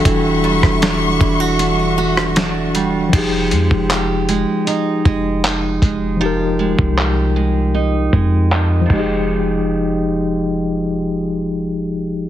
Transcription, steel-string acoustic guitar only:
0.00 0.43 G3 medium
0.00 0.81 D4 medium
0.00 1.20 F#4 medium
0.05 3.13 E3 medium
0.44 2.74 G3 medium
0.82 1.58 D4 medium
1.21 1.40 E4 medium
1.40 1.97 F#4 medium
1.59 2.35 D4 medium
1.98 3.14 F#4 medium
2.36 3.21 D4 medium
2.75 3.51 G3 medium
3.13 6.20 F3 medium
3.13 3.90 G4 medium
3.52 4.28 G#3 medium
3.90 6.21 G4 medium
4.29 5.05 G#3 medium
4.67 5.43 D#4 medium
5.05 5.82 G#3 medium
5.44 7.74 D#4 medium
5.82 6.59 G#3 medium
6.21 8.85 F3 medium
6.21 6.97 G4 medium
6.59 7.36 G#3 medium
6.98 8.94 G4 medium
7.36 8.13 G#3 medium
7.75 8.51 D#4 medium
8.13 8.91 G#3 medium
8.52 8.95 D#4 medium
8.86 12.29 F3 medium
8.91 12.29 G#3 medium
8.95 12.29 D#4 medium
8.95 12.29 G4 medium

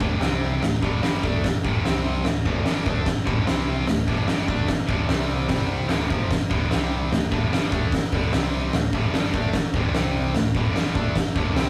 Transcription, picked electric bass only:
0.01 0.20 D1 medium
0.23 0.60 C2 medium
0.63 0.81 D1 medium
0.82 1.01 D1 loud
1.23 1.42 D2 medium
1.64 1.84 D1 medium
1.87 2.24 C2 loud
2.26 2.44 D1 medium
2.45 2.65 D1 loud
2.66 2.85 G1 loud
2.86 3.05 D2 loud
3.27 3.46 D1 medium
3.48 3.86 C2 loud
3.89 4.08 D1 medium
4.08 4.28 D1 medium
4.29 4.48 G1 loud
4.48 4.68 D2 medium
4.89 5.08 D1 medium
5.09 5.47 C2 loud
5.50 5.88 C2 medium
5.91 6.10 D1 loud
6.10 6.30 F1 medium
6.51 6.70 D1 medium
6.72 7.10 C2 loud
7.12 7.31 D1 medium
7.32 7.50 D1 medium
7.51 7.71 G1 loud
7.71 7.91 D2 loud
8.12 8.31 D1 medium
8.32 8.70 C2 medium
8.73 8.92 D1 medium
8.93 9.11 D1 medium
9.12 9.32 G1 loud
9.33 9.53 D2 medium
9.73 9.92 D1 medium
9.93 10.31 C2 loud
10.34 10.53 D1 medium
10.55 10.74 D1 medium
10.75 10.94 G1 loud
10.95 11.14 D2 medium
11.35 11.53 D1 medium
11.54 11.70 C2 loud

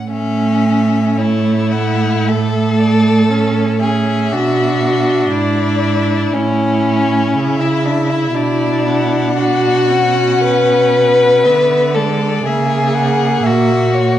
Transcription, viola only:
0.10 3.31 A3 soft
3.30 3.81 C#4 soft
3.81 4.34 C#4 soft
4.32 6.37 D4 medium
6.36 7.35 E4 soft
7.36 9.33 E4 soft
9.37 9.91 D4 medium
9.90 11.47 C#4 medium
11.45 11.97 B3 medium
11.96 12.47 G#3 medium
12.46 14.19 A#3 medium

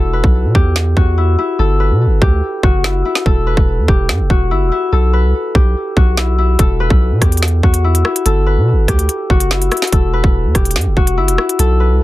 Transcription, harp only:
0.00 1.17 E4 medium
0.00 0.61 F#4 medium
0.00 1.59 A4 medium
0.00 0.13 B4 medium
0.13 1.79 B4 medium
0.55 1.03 G4 medium
0.97 2.28 F#4 medium
1.18 1.38 E4 medium
1.38 2.84 E4 medium
1.59 3.26 A4 medium
1.80 3.46 B4 medium
2.22 2.69 G4 medium
2.63 3.94 F#4 medium
2.84 3.05 E4 medium
3.05 4.51 E4 medium
3.26 4.92 A4 medium
3.47 5.13 B4 medium
3.88 4.36 G4 medium
4.30 5.61 F#4 medium
4.51 4.71 E4 medium
4.72 6.17 E4 medium
4.92 6.59 A4 medium
5.13 6.80 B4 medium
5.55 6.03 G4 medium
5.97 7.28 F#4 medium
6.17 6.38 E4 medium
6.38 7.84 E4 medium
6.59 8.25 A4 medium
6.80 8.46 B4 medium
7.22 7.69 G4 medium
7.63 8.94 F#4 medium
7.84 8.05 E4 medium
8.05 9.50 E4 medium
8.26 9.92 A4 medium
8.46 10.13 B4 medium
8.88 9.36 G4 medium
9.30 10.61 F#4 medium
9.51 9.71 E4 medium
9.72 11.17 E4 medium
9.92 11.59 A4 medium
10.13 11.80 B4 medium
10.55 11.03 G4 medium
10.97 12.04 F#4 medium
11.18 11.38 E4 medium
11.38 12.04 E4 medium
11.59 12.04 A4 loud
11.80 12.04 B4 medium

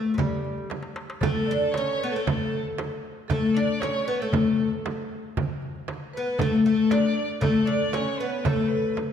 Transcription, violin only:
1.22 1.74 A4 medium
1.72 2.13 C#5 medium
2.12 2.64 A4 medium
3.29 3.56 A4 medium
3.55 3.82 D5 medium
3.81 4.19 C#5 medium
4.20 4.67 A4 medium
6.15 6.40 B4 medium
6.39 6.63 A4 medium
6.64 6.92 A4 medium
6.91 7.29 D5 medium
7.42 7.67 A4 medium
7.66 7.94 D5 medium
7.93 8.21 C#5 medium
8.19 8.46 B4 medium
8.44 8.70 A4 medium
8.69 8.96 B4 medium

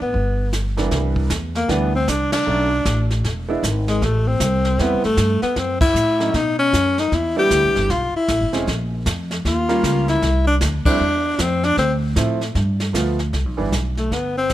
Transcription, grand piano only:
0.77 1.27 C2 medium
0.77 1.27 E3 medium
0.77 1.27 G3 medium
0.77 1.28 B3 medium
0.77 1.27 D4 medium
1.68 1.91 E3 medium
1.68 1.91 G3 medium
1.68 1.91 B3 medium
1.68 1.91 D4 medium
2.46 2.68 F#3 medium
2.46 2.69 A3 medium
2.46 2.69 C#4 soft
2.46 2.69 D4 medium
3.48 3.61 G#3 medium
3.48 3.61 B3 medium
3.48 3.62 D4 medium
3.48 3.62 E4 medium
4.80 5.02 G3 medium
4.80 5.02 B3 medium
4.80 5.02 C4 medium
4.80 5.02 E4 medium
6.19 6.32 F#3 medium
6.19 6.33 A3 medium
6.19 6.33 C#4 medium
6.19 6.33 D#4 medium
7.36 7.87 G3 medium
7.36 7.87 B3 medium
7.36 7.87 D4 medium
7.36 7.87 E4 medium
8.53 8.66 G#3 medium
8.53 8.66 C4 medium
8.53 8.66 C#4 medium
8.53 8.66 G#4 medium
9.69 10.19 G3 medium
9.69 10.19 A#3 medium
9.69 10.20 C#4 medium
9.69 10.20 F4 medium
10.85 10.99 G3 medium
10.85 10.99 A3 medium
10.85 10.99 C4 medium
10.85 10.99 E4 medium
12.16 12.39 F3 medium
12.16 12.39 A3 medium
12.16 12.39 C4 medium
12.16 12.39 E4 medium
12.93 13.16 F3 medium
12.93 13.16 A3 medium
12.93 13.17 B3 medium
12.93 13.17 F4 medium
13.57 13.70 E3 medium
13.57 13.71 G3 medium
13.57 13.71 B3 medium
13.57 13.71 D4 medium

